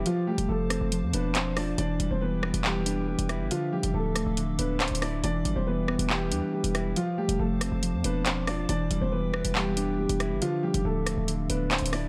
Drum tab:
HH |x--------x--------x-----x-----x-----x-----o-----|x-----x--------------x--------x--------x--x-----|x--------x--------x-----x-----x-----x-x-x-o-----|x-----x--------------x--------x--------x--x-----|
CP |------------------------------------x-----------|------------------------x-----------------------|------------------------------------x-----------|------------------------x-----------------------|
SD |------------------r-----------------------r-----|------------------r-----------------------r-----|------------------r-----------------------r-----|------------------r-----------------------r-----|

HH |x--------x--------x-----x-----x-----x-----o-----|x-----x--------------x--------x--------x--x-----|x--------x--------x-----x-----x-----x-x-x-o-----|
CP |------------------------------------x-----------|------------------------x-----------------------|------------------------------------x-----------|
SD |------------------r-----------------------r-----|------------------r-----------------------r-----|------------------r-----------------------r-----|